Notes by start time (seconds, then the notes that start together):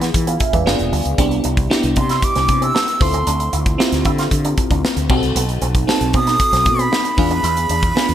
Already playing: E3 B3 D4 F4 G#4
0.01 B3, snare, closed hi-hat
0.14 E3, kick, closed hi-hat
0.27 B3 F5 G#5, closed hi-hat
0.40 E5, muted clean electric guitar stroke, kick, closed hi-hat
0.53 E2 G#3 B4 D5, kick, closed hi-hat
0.66 G1 B3 D4 F4 G#4, snare
0.79 E1, closed hi-hat
0.92 D2 G3, open hi-hat
1.05 C#2, closed hi-hat
1.18 C2 B3 C4 D4 E4 G4, kick, closed hi-hat
1.31 muted clean electric guitar stroke, closed hi-hat
1.44 C2 D4, closed hi-hat
1.57 kick, closed hi-hat
1.70 B3 D4 E4 G4, muted clean electric guitar stroke, snare
1.83 C2, closed hi-hat
1.96 C3 D4 C6, kick, closed hi-hat
2.09 E4, snare, closed hi-hat
2.22 D6, kick, closed hi-hat
2.35 C2 C4, snare, closed hi-hat
2.48 C3, muted clean electric guitar stroke, kick, closed hi-hat
2.61 C4 E6, closed hi-hat
2.75 D4, snare
2.87 muted clean electric guitar stroke, closed hi-hat
3.00 D2 C4 E4 F4 A4 C6, kick, open hi-hat
3.14 C4, closed hi-hat
3.27 D2 D4, closed hi-hat
3.40 muted clean electric guitar stroke, closed hi-hat
3.53 D2 E4, closed hi-hat
3.66 kick, closed hi-hat
3.78 C4 E4 F4 G4, muted clean electric guitar stroke, snare
3.92 D2, snare, closed hi-hat
4.05 D3 E4, kick, closed hi-hat
4.18 F4, snare, closed hi-hat
4.31 D3, kick, closed hi-hat
4.45 D4, closed hi-hat
4.58 muted clean electric guitar stroke, kick, closed hi-hat
4.71 D2 D4, kick, closed hi-hat
4.85 snare
4.97 D2, closed hi-hat
5.09 B1 C4 D#4 F#4 G4, kick, crash
5.17 A4
5.23 C2, closed hi-hat
5.35 B1 B3, closed hi-hat
5.49 muted clean electric guitar stroke, closed hi-hat
5.62 B1 C4, closed hi-hat
5.75 kick, closed hi-hat
5.87 C4 D#4 F#4 A4 A5, muted clean electric guitar stroke, snare
6.01 B1, closed hi-hat
6.13 B2 C4 D#6, kick, closed hi-hat
6.27 D#4, snare, closed hi-hat
6.40 kick, closed hi-hat
6.53 B1 C4, snare, closed hi-hat
6.66 B2, muted clean electric guitar stroke, kick, closed hi-hat
6.79 C4 B5, closed hi-hat
6.92 D#4, snare
7.05 muted clean electric guitar stroke, closed hi-hat
7.17 E2 B3 D4 F4 G#4, kick, open hi-hat
7.31 D4, closed hi-hat
7.43 E2 E4, closed hi-hat
7.57 muted clean electric guitar stroke, closed hi-hat
7.69 E2 D4, closed hi-hat
7.83 kick, closed hi-hat
7.95 B3 D4 F4 G#4, muted clean electric guitar stroke, snare
8.09 E2, closed hi-hat